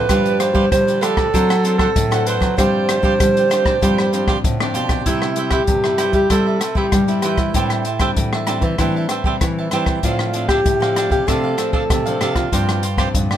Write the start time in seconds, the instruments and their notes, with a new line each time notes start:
Already playing: alto saxophone B4
0.09 nylon-string guitar G2 F3 G3 B3 D4, cavaquinho F4 G4 B4 D5, kick, cross-stick, closed hi-hat
0.26 closed hi-hat
0.40 cavaquinho F4 G4 B4 D5, alto saxophone C5, cross-stick, closed hi-hat
0.54 nylon-string guitar F3 G3 B3 D4, cavaquinho F4 G4 B4 D5, kick
0.72 nylon-string guitar D3 G3, alto saxophone C5, kick, cross-stick, closed hi-hat
0.87 cavaquinho G4 B4 D5, closed hi-hat
1.01 nylon-string guitar F3 B3 D4, cavaquinho F4 G4 B4 D5, alto saxophone A4, cross-stick, closed hi-hat
1.17 cavaquinho G4 B4 D5, kick, cross-stick
1.34 nylon-string guitar F#3 C4 D4 A4, cavaquinho D4 A4 C5 F#5, kick, closed hi-hat
1.50 cavaquinho A4 C5 F#5, cross-stick, closed hi-hat
1.64 nylon-string guitar C4 D4 A4, cavaquinho D4 A4 C5 F#5, closed hi-hat
1.78 cavaquinho D4 A4 C5 F#5, alto saxophone A4, kick, cross-stick
1.95 nylon-string guitar A2 F#3, kick, closed hi-hat
2.11 nylon-string guitar C4 D4 A4, cavaquinho C5 F#5, cross-stick, closed hi-hat
2.15 cavaquinho A4
2.27 cavaquinho D4 A4 C5 F#5, alto saxophone B4, closed hi-hat
2.40 nylon-string guitar F#3, kick, cross-stick, closed hi-hat
2.57 nylon-string guitar G2 F3 G3 C4 D4, cavaquinho F4 G4 C5 D5, alto saxophone C5, kick, cross-stick, closed hi-hat
2.88 cavaquinho F4 G4 C5 D5, cross-stick, closed hi-hat
3.02 nylon-string guitar F3 G3 C4 D4, cavaquinho F4 G4 C5 D5, kick
3.19 nylon-string guitar D3 G3, kick, cross-stick, closed hi-hat
3.37 cavaquinho G4 C5 D5, closed hi-hat
3.50 nylon-string guitar F3 C4 D4, cavaquinho F4 G4 C5 D5, cross-stick, closed hi-hat
3.65 cavaquinho G4 C5 D5, kick, cross-stick
3.81 nylon-string guitar G2 F3 G3 C4 D4, cavaquinho F4 G4 C5 D5, kick, closed hi-hat
3.98 cavaquinho G4 C5 D5, cross-stick
4.13 nylon-string guitar F3 C4 D4, cavaquinho F4 G4 C5 D5, closed hi-hat
4.27 cavaquinho F4 G4 C5 D5, kick, cross-stick
4.44 nylon-string guitar A2 D3, kick, closed hi-hat
4.60 nylon-string guitar F3 C4 D4, cavaquinho G4 C5 D5, cross-stick
4.74 nylon-string guitar B2, cavaquinho F4 G4 C5 D5, closed hi-hat
4.89 kick, cross-stick, closed hi-hat
5.06 nylon-string guitar C3 G3 B3 E4, alto saxophone E4, cavaquinho E4 B4 C5 E5, kick, closed hi-hat
5.22 cross-stick
5.36 nylon-string guitar G3 B3 E4, cavaquinho E4 B4 C5 E5, closed hi-hat
5.51 cavaquinho E4 B4 C5 E5, alto saxophone G4, kick, cross-stick, closed hi-hat
5.67 nylon-string guitar G2 C3, kick, closed hi-hat
5.84 nylon-string guitar G3 B3 E4, cavaquinho B4 C5 E5, cross-stick
5.98 cavaquinho E4 B4 C5 E5, cross-stick, closed hi-hat
6.12 nylon-string guitar G3, alto saxophone G4, cavaquinho B4 C5 E5, kick, closed hi-hat
6.30 nylon-string guitar C3 G3 B3 E4, cavaquinho E4 B4 C5 E5, alto saxophone A4, kick, cross-stick, closed hi-hat
6.47 cavaquinho B4 C5 E5
6.60 cavaquinho E4 B4 C5 E5, cross-stick, closed hi-hat
6.75 nylon-string guitar G3 B3 E4, cavaquinho E4 B4 C5 E5, alto saxophone G4, kick
6.92 nylon-string guitar G2 G3, kick, cross-stick, closed hi-hat
7.08 nylon-string guitar G3 B3 E4, cavaquinho B4 C5 E5, closed hi-hat
7.22 nylon-string guitar E3, cavaquinho E4 B4 C5 E5, cross-stick, closed hi-hat
7.37 alto saxophone E4, kick, cross-stick, closed hi-hat
7.53 nylon-string guitar A2 G3 C4 D4, cavaquinho G4 C5 E5, kick, closed hi-hat
7.58 cavaquinho A5
7.70 cross-stick, closed hi-hat
7.85 cavaquinho G4 C5 E5 A5, closed hi-hat
7.99 nylon-string guitar G3 C4 D4, cavaquinho G4 C5 E5 A5, kick, cross-stick, closed hi-hat
8.17 nylon-string guitar A2 E3, kick, closed hi-hat
8.33 cavaquinho C5 E5 A5, cross-stick
8.46 nylon-string guitar G3 C4 D4, cavaquinho G4 C5 E5 A5, cross-stick, closed hi-hat
8.61 nylon-string guitar E3, cavaquinho C5 E5 A5, kick, closed hi-hat
8.78 nylon-string guitar A2 E3 G3 C4 D4, cavaquinho G4 C5 E5 A5, kick, cross-stick, closed hi-hat
8.96 cavaquinho C5 E5 A5
9.09 cavaquinho G4 C5 E5 A5, cross-stick, closed hi-hat
9.24 nylon-string guitar G3 C4 D4, cavaquinho G4 C5 E5 A5, kick
9.41 nylon-string guitar E3, kick, cross-stick, closed hi-hat
9.59 cavaquinho C5 E5 A5
9.71 nylon-string guitar E3 G3 C4 D4, cavaquinho G4 C5 E5, cross-stick, closed hi-hat
9.75 cavaquinho A5
9.86 kick, cross-stick, closed hi-hat
10.03 nylon-string guitar A2 F3 C4 D4, cavaquinho D4 A4 D5 F5, alto saxophone F4, kick, closed hi-hat
10.19 cross-stick
10.33 nylon-string guitar F3 C4 D4, cavaquinho D4 A4 D5 F5, closed hi-hat
10.48 cavaquinho D4 A4 D5 F5, alto saxophone G4, kick, cross-stick, closed hi-hat
10.65 nylon-string guitar A2, kick, closed hi-hat
10.80 nylon-string guitar F3 C4 D4, cavaquinho D5 F5, cross-stick
10.85 cavaquinho A4
10.96 cavaquinho D4 A4 D5 F5, cross-stick, closed hi-hat
11.10 nylon-string guitar C3, alto saxophone G4, cavaquinho A4 D5 F5, kick, closed hi-hat
11.27 nylon-string guitar A2 C3 F3 C4 D4, cavaquinho D4 A4 D5 F5, alto saxophone A4, kick, cross-stick, closed hi-hat
11.44 cavaquinho A4 D5 F5
11.57 nylon-string guitar F3 C4 D4, cavaquinho D4 A4 D5 F5, cross-stick, closed hi-hat
11.73 cavaquinho D4 A4 D5 F5, alto saxophone A4, kick
11.90 nylon-string guitar A2 C3, kick, cross-stick, closed hi-hat
12.06 nylon-string guitar F3 C4 D4, cavaquinho A4 D5 F5, closed hi-hat
12.21 nylon-string guitar C3, cavaquinho D4 A4 D5 F5, cross-stick, closed hi-hat
12.35 alto saxophone F4, kick, cross-stick, closed hi-hat
12.52 nylon-string guitar G2 F3 C4 D4, cavaquinho F4 G4 C5 D5, kick, closed hi-hat
12.69 cross-stick, closed hi-hat
12.83 cavaquinho F4 G4 C5 D5, closed hi-hat
12.98 nylon-string guitar F3 C4 D4, cavaquinho F4 G4 C5 D5, kick, cross-stick, closed hi-hat
13.14 nylon-string guitar G2 D3, kick, closed hi-hat
13.31 cavaquinho G4 C5 D5, cross-stick